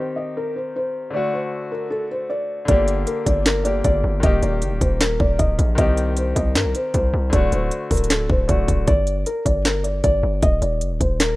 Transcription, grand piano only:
0, 0, Header, 1, 2, 480
1, 0, Start_track
1, 0, Key_signature, -2, "minor"
1, 0, Tempo, 387097
1, 1407, Time_signature, 4, 2, 24, 8
1, 14090, End_track
2, 0, Start_track
2, 0, Title_t, "Grand piano"
2, 0, Program_c, 0, 0
2, 0, Control_c, 0, 64, 127
2, 0, Note_on_c, 0, 51, 66
2, 0, Note_on_c, 0, 60, 55
2, 0, Note_on_c, 0, 67, 72
2, 1349, Note_off_c, 0, 51, 0
2, 1367, Note_off_c, 0, 60, 0
2, 1369, Note_on_c, 0, 50, 65
2, 1386, Note_off_c, 0, 67, 0
2, 1406, Note_on_c, 0, 57, 59
2, 1422, Control_c, 0, 64, 0
2, 1442, Note_on_c, 0, 66, 76
2, 1646, Control_c, 0, 64, 127
2, 3269, Note_off_c, 0, 50, 0
2, 3288, Note_off_c, 0, 57, 0
2, 3288, Note_on_c, 0, 50, 71
2, 3307, Note_off_c, 0, 66, 0
2, 3325, Note_on_c, 0, 58, 64
2, 3345, Control_c, 0, 64, 0
2, 3361, Note_on_c, 0, 67, 71
2, 3584, Control_c, 0, 64, 127
2, 4483, Note_off_c, 0, 50, 0
2, 4502, Note_off_c, 0, 58, 0
2, 4509, Note_on_c, 0, 50, 50
2, 4521, Note_off_c, 0, 67, 0
2, 4528, Note_on_c, 0, 58, 48
2, 4546, Note_on_c, 0, 67, 61
2, 5208, Note_on_c, 0, 51, 65
2, 5225, Note_off_c, 0, 58, 0
2, 5238, Note_off_c, 0, 50, 0
2, 5244, Note_on_c, 0, 58, 60
2, 5257, Note_off_c, 0, 67, 0
2, 5264, Control_c, 0, 64, 0
2, 5280, Note_on_c, 0, 67, 81
2, 5476, Control_c, 0, 64, 127
2, 7109, Note_off_c, 0, 51, 0
2, 7127, Note_off_c, 0, 58, 0
2, 7131, Note_on_c, 0, 51, 72
2, 7146, Note_off_c, 0, 67, 0
2, 7168, Note_on_c, 0, 60, 59
2, 7185, Control_c, 0, 64, 0
2, 7204, Note_on_c, 0, 67, 74
2, 7411, Control_c, 0, 64, 127
2, 9030, Note_off_c, 0, 51, 0
2, 9049, Note_off_c, 0, 60, 0
2, 9050, Note_on_c, 0, 50, 73
2, 9068, Note_off_c, 0, 67, 0
2, 9086, Note_on_c, 0, 57, 62
2, 9102, Control_c, 0, 64, 0
2, 9123, Note_on_c, 0, 66, 73
2, 9346, Control_c, 0, 64, 127
2, 10479, Note_off_c, 0, 50, 0
2, 10498, Note_off_c, 0, 57, 0
2, 10511, Note_on_c, 0, 50, 54
2, 10517, Note_off_c, 0, 66, 0
2, 10529, Note_on_c, 0, 57, 49
2, 10547, Note_on_c, 0, 66, 56
2, 10999, Note_off_c, 0, 50, 0
2, 11008, Note_off_c, 0, 57, 0
2, 11017, Note_off_c, 0, 66, 0
2, 11025, Control_c, 0, 64, 0
2, 14090, End_track
0, 0, End_of_file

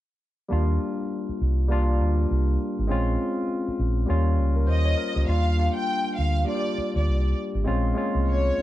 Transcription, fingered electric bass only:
0, 0, Header, 1, 3, 480
1, 0, Start_track
1, 0, Key_signature, -3, "major"
1, 0, Tempo, 595829
1, 413, Time_signature, 4, 2, 24, 8
1, 6945, End_track
2, 0, Start_track
2, 0, Title_t, "Fingered electric bass"
2, 0, Program_c, 0, 33
2, 419, Note_on_c, 0, 39, 85
2, 615, Note_off_c, 0, 39, 0
2, 1139, Note_on_c, 0, 36, 68
2, 1619, Note_off_c, 0, 36, 0
2, 1619, Note_on_c, 0, 38, 80
2, 1815, Note_off_c, 0, 38, 0
2, 1860, Note_on_c, 0, 36, 87
2, 2055, Note_off_c, 0, 36, 0
2, 2246, Note_on_c, 0, 32, 84
2, 2323, Note_off_c, 0, 32, 0
2, 2341, Note_on_c, 0, 34, 76
2, 2536, Note_off_c, 0, 34, 0
2, 3055, Note_on_c, 0, 34, 80
2, 3253, Note_off_c, 0, 34, 0
2, 3301, Note_on_c, 0, 39, 96
2, 3538, Note_off_c, 0, 39, 0
2, 3538, Note_on_c, 0, 37, 74
2, 3779, Note_off_c, 0, 37, 0
2, 3779, Note_on_c, 0, 39, 93
2, 3975, Note_off_c, 0, 39, 0
2, 4156, Note_on_c, 0, 37, 77
2, 4238, Note_off_c, 0, 37, 0
2, 4256, Note_on_c, 0, 39, 81
2, 4569, Note_off_c, 0, 39, 0
2, 4982, Note_on_c, 0, 38, 58
2, 5177, Note_off_c, 0, 38, 0
2, 5605, Note_on_c, 0, 38, 69
2, 5683, Note_off_c, 0, 38, 0
2, 5702, Note_on_c, 0, 36, 85
2, 5897, Note_off_c, 0, 36, 0
2, 6080, Note_on_c, 0, 32, 82
2, 6161, Note_off_c, 0, 32, 0
2, 6179, Note_on_c, 0, 34, 83
2, 6376, Note_off_c, 0, 34, 0
2, 6565, Note_on_c, 0, 36, 69
2, 6843, Note_off_c, 0, 36, 0
2, 6945, End_track
3, 0, Start_track
3, 0, Title_t, "Muted fingered electric bass strokes"
3, 1040, Note_on_c, 9, 29, 40
3, 1121, Note_off_c, 9, 29, 0
3, 2965, Note_on_c, 9, 29, 38
3, 3046, Note_off_c, 9, 29, 0
3, 5462, Note_on_c, 9, 29, 37
3, 5543, Note_off_c, 9, 29, 0
3, 6908, Note_on_c, 9, 29, 36
3, 6945, Note_off_c, 9, 29, 0
3, 6945, End_track
0, 0, End_of_file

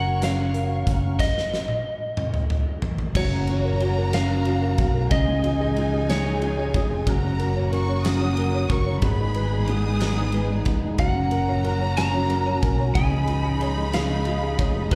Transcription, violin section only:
0, 0, Header, 1, 2, 480
1, 0, Start_track
1, 0, Key_signature, 6, "major"
1, 0, Tempo, 652884
1, 879, Time_signature, 6, 3, 24, 8
1, 10991, End_track
2, 0, Start_track
2, 0, Title_t, "Violin section"
2, 0, Program_c, 0, 48
2, 2313, Note_on_c, 0, 82, 98
2, 3726, Note_off_c, 0, 82, 0
2, 3754, Note_on_c, 0, 80, 97
2, 5184, Note_on_c, 0, 82, 101
2, 5196, Note_off_c, 0, 80, 0
2, 5671, Note_off_c, 0, 82, 0
2, 5671, Note_on_c, 0, 85, 101
2, 5897, Note_off_c, 0, 85, 0
2, 5900, Note_on_c, 0, 87, 103
2, 6387, Note_on_c, 0, 85, 96
2, 6389, Note_off_c, 0, 87, 0
2, 6620, Note_on_c, 0, 83, 104
2, 6633, Note_off_c, 0, 85, 0
2, 7080, Note_off_c, 0, 83, 0
2, 7100, Note_on_c, 0, 87, 108
2, 7830, Note_off_c, 0, 87, 0
2, 8074, Note_on_c, 0, 82, 110
2, 9490, Note_off_c, 0, 82, 0
2, 9514, Note_on_c, 0, 83, 122
2, 10931, Note_off_c, 0, 83, 0
2, 10960, Note_on_c, 0, 82, 106
2, 10991, Note_off_c, 0, 82, 0
2, 10991, End_track
0, 0, End_of_file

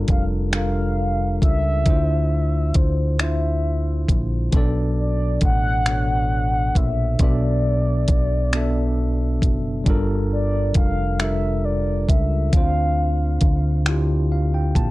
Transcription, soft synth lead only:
0, 0, Header, 1, 2, 480
1, 0, Start_track
1, 0, Tempo, 888889
1, 1006, Time_signature, 6, 3, 24, 8
1, 8050, End_track
2, 0, Start_track
2, 0, Title_t, "Soft synth lead"
2, 0, Program_c, 0, 80
2, 54, Note_on_c, 0, 77, 88
2, 130, Note_off_c, 0, 77, 0
2, 294, Note_on_c, 0, 77, 98
2, 748, Note_off_c, 0, 77, 0
2, 770, Note_on_c, 0, 76, 107
2, 1488, Note_on_c, 0, 72, 82
2, 1496, Note_off_c, 0, 76, 0
2, 1729, Note_on_c, 0, 76, 77
2, 1737, Note_off_c, 0, 72, 0
2, 2268, Note_off_c, 0, 76, 0
2, 2699, Note_on_c, 0, 74, 86
2, 2916, Note_off_c, 0, 74, 0
2, 2942, Note_on_c, 0, 78, 101
2, 3655, Note_on_c, 0, 76, 96
2, 3663, Note_off_c, 0, 78, 0
2, 3897, Note_on_c, 0, 74, 88
2, 3905, Note_off_c, 0, 76, 0
2, 5092, Note_off_c, 0, 74, 0
2, 5575, Note_on_c, 0, 74, 92
2, 5794, Note_off_c, 0, 74, 0
2, 5810, Note_on_c, 0, 77, 97
2, 6051, Note_on_c, 0, 76, 94
2, 6059, Note_off_c, 0, 77, 0
2, 6289, Note_on_c, 0, 74, 93
2, 6297, Note_off_c, 0, 76, 0
2, 6527, Note_on_c, 0, 76, 90
2, 6535, Note_off_c, 0, 74, 0
2, 6762, Note_off_c, 0, 76, 0
2, 6766, Note_on_c, 0, 77, 107
2, 7464, Note_off_c, 0, 77, 0
2, 8050, End_track
0, 0, End_of_file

